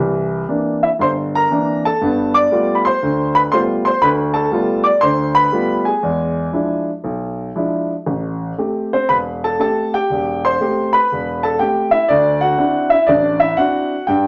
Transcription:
Already playing: C2 E3
0.48 E3 A#3 C4 D4
0.83 E4 E5
0.99 G1 C5 C6
1.35 A#4 A#5
1.51 E3 A#3 C4 D4
1.85 A4 A5
2.01 G2 B3
2.34 D5 D6
2.51 G3 A3 B3 F4
2.75 B5
2.85 C5 C6
3.03 D2
3.35 B4 B5
3.52 G3 A3 B3 F4 C5 C6
3.85 C5 C6
4.02 D2 B4 B5
4.34 A4 A5
4.52 G3 A3 B3 F4
4.84 D5 D6
5.01 D2 C5 C6
5.35 B4 B5
5.52 G3 A3 B3 F4
5.85 G#4 G#5
6.03 E2 G#3
6.53 F3 G#3 D4 E4
7.04 B1
7.56 F3 G#3 D4 E4
8.06 A1
8.58 A3 C4 G4
8.93 C4 C5
9.09 E1 B4 B5
9.44 A4 A5
9.59 A3 C4 G4 A4 A5
9.94 G4 G5
10.10 E1
10.45 C5 C6
10.61 A3 C4 G4
10.93 B4 B5
11.12 E1
11.43 A4 A5
11.59 A3 C4 G4 G5
11.91 E4 E5
12.09 D2 D4 D5
12.41 F#4 F#5
12.58 C4 D4 E4 F#4
12.90 E4 E5
13.07 A1 D4 D5
13.40 E4 E5
13.57 C4 D4 E4 F#4 F#5
14.07 G2 G4 G5

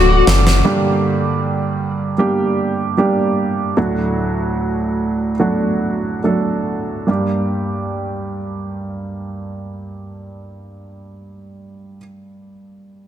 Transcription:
Already playing: D1 A2 F#3 A3 D4 F#4 A4 D5 F#5 D6
0.26 F#1, snare
0.47 snare
0.64 G2 D3 G3 A#3 D4 G4
2.18 G3 A#3 D4 G4
2.97 G3 A#3 D4 G4
3.77 D2 A2 F#3 A3 D4 F#4
5.39 F#3 A3 D4 F#4
6.24 F#3 A3 D4 A4
7.07 G2 G3 A#3 D4
7.11 G4

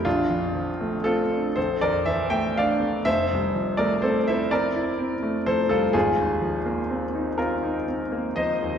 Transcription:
0.05 A#1 D4 F4
0.29 F2
0.55 F3
0.81 A3
1.04 C4 F4 A4
1.33 D4
1.56 A#1 A4 C5
1.81 F2 A#4 D5
2.06 E3 C5 E5
2.30 A3 E5 G5
2.57 D4 D5 F5
2.80 A3
3.05 F1 C5 E5
3.33 C2
3.54 F3
3.77 A3 A#4 D5
4.02 C4 A4 C5
4.27 E4 C5 E5
4.51 C4 A#4 D5
4.76 E4
4.98 C4
5.23 A3
5.46 F3 A4 C5
5.69 C2 F4 A4
5.93 G#1 F4 G#4
6.20 D#2
6.41 F3
6.66 A#3
6.90 C4
7.15 D#4
7.37 C4 F4 A#4
7.63 D#4
7.87 C4
8.12 A#3
8.36 F3 C5 D#5
8.62 D#2

